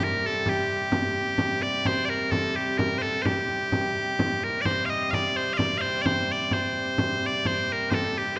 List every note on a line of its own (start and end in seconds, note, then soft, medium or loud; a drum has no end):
0.00 4.62 C3 medium
0.00 4.63 G3 medium
0.00 0.26 A#4 medium
0.26 0.49 A4 medium
0.46 1.62 G4 medium
0.46 frame drum medium
0.92 frame drum medium
1.38 frame drum medium
1.62 1.86 D5 medium
1.85 2.05 C5 medium
1.85 frame drum medium
2.05 2.10 D5 medium
2.10 2.31 A#4 medium
2.31 2.56 A4 medium
2.31 frame drum medium
2.56 2.78 G4 medium
2.78 2.98 A#4 medium
2.78 frame drum medium
2.98 3.22 A4 medium
2.98 3.02 C5 medium
3.22 4.44 G4 medium
3.22 3.26 C5 medium
3.22 frame drum medium
3.50 frame drum soft
3.72 frame drum medium
4.19 frame drum medium
4.44 4.61 A#4 medium
4.61 8.39 C3 medium
4.61 8.39 G3 medium
4.61 4.65 D5 medium
4.65 4.85 C5 medium
4.65 frame drum medium
4.85 4.90 F5 medium
4.90 5.11 D#5 medium
5.11 5.36 D5 medium
5.11 5.14 F5 medium
5.11 frame drum medium
5.36 5.53 C5 medium
5.53 5.57 F5 medium
5.57 5.78 D5 medium
5.57 frame drum medium
5.78 6.02 C5 medium
5.78 5.81 F5 medium
6.02 6.06 D5 medium
6.06 6.32 C5 medium
6.06 frame drum medium
6.32 6.53 D5 medium
6.51 7.26 C5 medium
6.51 frame drum medium
6.98 frame drum medium
7.26 7.47 D5 medium
7.45 7.72 C5 medium
7.45 frame drum medium
7.72 7.91 A#4 medium
7.91 8.18 A4 medium
7.91 7.94 C5 medium
7.91 frame drum medium
8.18 8.37 G4 medium